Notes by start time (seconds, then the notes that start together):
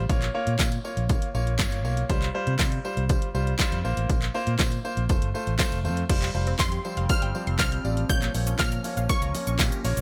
0.09 A#1 A#3 F4 C#5, kick, closed hi-hat, tambourine
0.22 clap, closed hi-hat
0.34 A#3 F4 C#5
0.47 A#2, closed hi-hat
0.59 A#2 A#3 F4, kick, snare, clap, closed hi-hat, tambourine
0.72 closed hi-hat
0.84 A#3 F4 C#5, tambourine
0.97 A#1, closed hi-hat
1.09 A#3 F4 C#5, kick, closed hi-hat, tambourine
1.22 closed hi-hat
1.34 A#1 A#3 F4 C#5, tambourine
1.47 closed hi-hat
1.59 G1 A#3 F4 C#5, kick, snare, clap, closed hi-hat, tambourine
1.72 closed hi-hat
1.84 B1 A#3 F4 C#5, tambourine
1.97 closed hi-hat
2.09 C2 G3 F4 C5, kick, closed hi-hat, tambourine
2.22 clap, closed hi-hat
2.34 G3 F4 C5
2.47 C3, closed hi-hat
2.59 C3 G3 F4 C5, kick, snare, clap, closed hi-hat, tambourine
2.72 closed hi-hat
2.84 G3 F4 C5, tambourine
2.97 C2, closed hi-hat
3.09 G3 F4 C5, kick, closed hi-hat, tambourine
3.22 closed hi-hat
3.34 C2 G3 F4 C5, tambourine
3.47 closed hi-hat
3.59 G3 F4 C5, kick, snare, clap, closed hi-hat, tambourine
3.72 F2, closed hi-hat
3.84 A#1 A#3 F4 C5, tambourine
3.97 A1, closed hi-hat
4.09 A#1, kick, closed hi-hat, tambourine
4.22 clap, closed hi-hat
4.34 A#3 F4 C5, tambourine
4.47 A#2, closed hi-hat
4.59 A#2 A#3 F4 C5, kick, snare, clap, closed hi-hat, tambourine
4.72 closed hi-hat
4.84 A#3 F4 C5, tambourine
4.97 A#1, closed hi-hat
5.09 F1 A3 F4 C5, kick, closed hi-hat, tambourine
5.22 G1, closed hi-hat
5.34 A3 F4 C5, tambourine
5.47 A1, closed hi-hat
5.59 A3 F4 C5, muted fingered electric bass stroke, kick, snare, clap, closed hi-hat, tambourine
5.72 F1, closed hi-hat
5.84 F2 A3 F4 C5, tambourine
5.97 closed hi-hat
6.09 F1 F3 G3 C4 F4 C5, kick, closed hi-hat, crash, tambourine
6.22 G3, clap, closed hi-hat
6.34 F1 F3 G3 F4 C5, tambourine
6.47 C4, closed hi-hat
6.59 F2 F3 G4 C6, kick, snare, clap, closed hi-hat, tambourine
6.72 G4, closed hi-hat
6.84 F3 G3 F4 C5, tambourine
6.97 F1 F5, closed hi-hat
7.09 G3 F4 C5 F6, kick, closed hi-hat, tambourine
7.22 G1 G5, closed hi-hat
7.34 F3 G3 F4 C5, tambourine
7.47 F1 C6, closed hi-hat
7.59 C2 G3 F4 C5 F6, kick, snare, clap, closed hi-hat, tambourine
7.72 G6, closed hi-hat
7.84 A1 G3 F4 D5, tambourine
7.97 closed hi-hat
8.09 A#1 F3 A#3 C#4 F4 C#5 G6, kick, closed hi-hat, shaker
8.22 A#3, clap, closed hi-hat, shaker
8.34 A#1 F3 A#3 F4 C#5, open hi-hat, tambourine, shaker
8.47 C#4, closed hi-hat, shaker
8.59 A#2 F3 A#3 F4 C#5 F6, kick, snare, clap, closed hi-hat, tambourine, shaker
8.72 A#4, closed hi-hat, shaker
8.84 F3 A#3 F4 C#5, open hi-hat, tambourine, shaker
8.97 A#1 F5, closed hi-hat, shaker
9.09 A#3 F4 C#5 C#6, kick, closed hi-hat, tambourine, shaker
9.22 C#2 A#5, closed hi-hat, shaker
9.34 F3 A#3 F4 C#5, open hi-hat, tambourine, shaker
9.47 A#1 C#6, closed hi-hat, shaker
9.59 A#2 A#3 F4 G4, kick, snare, clap, closed hi-hat, tambourine, shaker
9.72 A#6, closed hi-hat, shaker
9.84 A#1 A#3 F4 C#5, open hi-hat, tambourine, shaker
9.97 B1, closed hi-hat, shaker